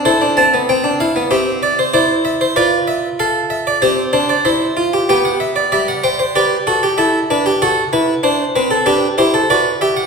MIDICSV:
0, 0, Header, 1, 2, 480
1, 0, Start_track
1, 0, Key_signature, 0, "major"
1, 0, Tempo, 630252
1, 36, Time_signature, 4, 2, 24, 8
1, 3875, Key_signature, 1, "major"
1, 7666, End_track
2, 0, Start_track
2, 0, Title_t, "Harpsichord"
2, 0, Program_c, 0, 6
2, 40, Note_on_c, 0, 72, 79
2, 41, Note_on_c, 0, 64, 72
2, 41, Note_on_c, 0, 69, 73
2, 156, Note_off_c, 0, 64, 0
2, 163, Note_on_c, 0, 62, 57
2, 189, Note_off_c, 0, 72, 0
2, 278, Note_off_c, 0, 62, 0
2, 282, Note_on_c, 0, 81, 85
2, 284, Note_on_c, 0, 60, 64
2, 399, Note_off_c, 0, 60, 0
2, 409, Note_on_c, 0, 59, 55
2, 431, Note_off_c, 0, 81, 0
2, 522, Note_off_c, 0, 59, 0
2, 527, Note_on_c, 0, 60, 68
2, 528, Note_on_c, 0, 79, 75
2, 640, Note_on_c, 0, 62, 64
2, 641, Note_off_c, 0, 60, 0
2, 675, Note_off_c, 0, 79, 0
2, 757, Note_off_c, 0, 62, 0
2, 764, Note_on_c, 0, 77, 77
2, 765, Note_on_c, 0, 64, 65
2, 880, Note_off_c, 0, 64, 0
2, 883, Note_on_c, 0, 59, 67
2, 912, Note_off_c, 0, 77, 0
2, 975, Note_off_c, 0, 69, 0
2, 995, Note_on_c, 0, 60, 67
2, 997, Note_on_c, 0, 67, 61
2, 997, Note_on_c, 0, 76, 79
2, 999, Note_off_c, 0, 59, 0
2, 1146, Note_off_c, 0, 76, 0
2, 1239, Note_on_c, 0, 74, 84
2, 1355, Note_off_c, 0, 74, 0
2, 1363, Note_on_c, 0, 72, 77
2, 1461, Note_off_c, 0, 60, 0
2, 1462, Note_off_c, 0, 67, 0
2, 1466, Note_off_c, 0, 72, 0
2, 1473, Note_on_c, 0, 64, 74
2, 1473, Note_on_c, 0, 74, 84
2, 1475, Note_on_c, 0, 72, 71
2, 1623, Note_off_c, 0, 74, 0
2, 1712, Note_on_c, 0, 76, 93
2, 1827, Note_off_c, 0, 72, 0
2, 1830, Note_off_c, 0, 76, 0
2, 1837, Note_on_c, 0, 72, 82
2, 1939, Note_off_c, 0, 64, 0
2, 1951, Note_on_c, 0, 71, 79
2, 1952, Note_on_c, 0, 65, 77
2, 1953, Note_off_c, 0, 72, 0
2, 1953, Note_on_c, 0, 74, 93
2, 2102, Note_off_c, 0, 74, 0
2, 2190, Note_on_c, 0, 76, 88
2, 2339, Note_off_c, 0, 76, 0
2, 2417, Note_off_c, 0, 71, 0
2, 2433, Note_on_c, 0, 69, 75
2, 2435, Note_on_c, 0, 77, 85
2, 2582, Note_off_c, 0, 77, 0
2, 2667, Note_on_c, 0, 76, 77
2, 2785, Note_off_c, 0, 76, 0
2, 2796, Note_on_c, 0, 74, 86
2, 2880, Note_off_c, 0, 65, 0
2, 2896, Note_off_c, 0, 69, 0
2, 2909, Note_on_c, 0, 72, 78
2, 2910, Note_off_c, 0, 74, 0
2, 2910, Note_on_c, 0, 60, 69
2, 2911, Note_on_c, 0, 67, 66
2, 3058, Note_off_c, 0, 72, 0
2, 3059, Note_off_c, 0, 60, 0
2, 3145, Note_on_c, 0, 72, 82
2, 3146, Note_on_c, 0, 62, 66
2, 3264, Note_off_c, 0, 72, 0
2, 3270, Note_on_c, 0, 74, 75
2, 3296, Note_off_c, 0, 62, 0
2, 3376, Note_off_c, 0, 67, 0
2, 3387, Note_off_c, 0, 74, 0
2, 3388, Note_on_c, 0, 76, 75
2, 3390, Note_on_c, 0, 64, 64
2, 3390, Note_on_c, 0, 72, 68
2, 3540, Note_off_c, 0, 64, 0
2, 3631, Note_on_c, 0, 65, 71
2, 3749, Note_off_c, 0, 65, 0
2, 3758, Note_on_c, 0, 67, 60
2, 3859, Note_off_c, 0, 76, 0
2, 3860, Note_off_c, 0, 72, 0
2, 3870, Note_off_c, 0, 67, 0
2, 3879, Note_on_c, 0, 59, 66
2, 3879, Note_on_c, 0, 67, 86
2, 3882, Note_on_c, 0, 79, 68
2, 3996, Note_off_c, 0, 79, 0
2, 3998, Note_on_c, 0, 78, 64
2, 4028, Note_off_c, 0, 67, 0
2, 4114, Note_off_c, 0, 78, 0
2, 4114, Note_on_c, 0, 76, 82
2, 4233, Note_on_c, 0, 74, 62
2, 4265, Note_off_c, 0, 76, 0
2, 4345, Note_off_c, 0, 59, 0
2, 4348, Note_off_c, 0, 74, 0
2, 4357, Note_on_c, 0, 74, 81
2, 4358, Note_on_c, 0, 76, 67
2, 4360, Note_on_c, 0, 55, 65
2, 4475, Note_off_c, 0, 76, 0
2, 4480, Note_on_c, 0, 78, 64
2, 4506, Note_off_c, 0, 74, 0
2, 4596, Note_off_c, 0, 78, 0
2, 4597, Note_on_c, 0, 72, 81
2, 4598, Note_on_c, 0, 79, 68
2, 4707, Note_off_c, 0, 72, 0
2, 4714, Note_off_c, 0, 79, 0
2, 4717, Note_on_c, 0, 72, 70
2, 4825, Note_off_c, 0, 55, 0
2, 4834, Note_off_c, 0, 72, 0
2, 4840, Note_on_c, 0, 67, 67
2, 4841, Note_on_c, 0, 74, 66
2, 4844, Note_on_c, 0, 71, 76
2, 4989, Note_off_c, 0, 67, 0
2, 4991, Note_off_c, 0, 71, 0
2, 5080, Note_on_c, 0, 66, 66
2, 5080, Note_on_c, 0, 69, 78
2, 5196, Note_off_c, 0, 69, 0
2, 5203, Note_on_c, 0, 67, 80
2, 5229, Note_off_c, 0, 66, 0
2, 5306, Note_off_c, 0, 74, 0
2, 5313, Note_on_c, 0, 76, 70
2, 5316, Note_on_c, 0, 69, 83
2, 5317, Note_on_c, 0, 64, 74
2, 5318, Note_off_c, 0, 67, 0
2, 5466, Note_off_c, 0, 69, 0
2, 5467, Note_off_c, 0, 64, 0
2, 5563, Note_on_c, 0, 62, 72
2, 5564, Note_on_c, 0, 71, 81
2, 5679, Note_off_c, 0, 71, 0
2, 5681, Note_on_c, 0, 67, 81
2, 5712, Note_off_c, 0, 62, 0
2, 5784, Note_off_c, 0, 76, 0
2, 5798, Note_off_c, 0, 67, 0
2, 5803, Note_on_c, 0, 78, 70
2, 5804, Note_on_c, 0, 66, 80
2, 5804, Note_on_c, 0, 69, 91
2, 5952, Note_off_c, 0, 66, 0
2, 5952, Note_off_c, 0, 69, 0
2, 6038, Note_on_c, 0, 64, 78
2, 6038, Note_on_c, 0, 71, 94
2, 6188, Note_off_c, 0, 64, 0
2, 6188, Note_off_c, 0, 71, 0
2, 6270, Note_on_c, 0, 62, 74
2, 6273, Note_on_c, 0, 72, 92
2, 6422, Note_off_c, 0, 62, 0
2, 6424, Note_off_c, 0, 72, 0
2, 6516, Note_on_c, 0, 71, 84
2, 6518, Note_on_c, 0, 60, 72
2, 6630, Note_on_c, 0, 69, 88
2, 6634, Note_off_c, 0, 71, 0
2, 6667, Note_off_c, 0, 60, 0
2, 6733, Note_off_c, 0, 78, 0
2, 6748, Note_on_c, 0, 62, 73
2, 6748, Note_on_c, 0, 71, 74
2, 6750, Note_on_c, 0, 67, 90
2, 6752, Note_off_c, 0, 69, 0
2, 6900, Note_off_c, 0, 62, 0
2, 6901, Note_off_c, 0, 71, 0
2, 6902, Note_off_c, 0, 67, 0
2, 6990, Note_on_c, 0, 64, 71
2, 6993, Note_on_c, 0, 72, 78
2, 6994, Note_on_c, 0, 67, 90
2, 7113, Note_on_c, 0, 69, 82
2, 7114, Note_off_c, 0, 67, 0
2, 7142, Note_off_c, 0, 64, 0
2, 7144, Note_off_c, 0, 72, 0
2, 7233, Note_off_c, 0, 69, 0
2, 7236, Note_on_c, 0, 71, 85
2, 7236, Note_on_c, 0, 74, 75
2, 7238, Note_on_c, 0, 66, 74
2, 7386, Note_off_c, 0, 74, 0
2, 7387, Note_off_c, 0, 66, 0
2, 7473, Note_on_c, 0, 76, 78
2, 7477, Note_on_c, 0, 67, 87
2, 7590, Note_on_c, 0, 78, 73
2, 7592, Note_off_c, 0, 76, 0
2, 7626, Note_off_c, 0, 67, 0
2, 7666, Note_off_c, 0, 71, 0
2, 7666, Note_off_c, 0, 78, 0
2, 7666, End_track
0, 0, End_of_file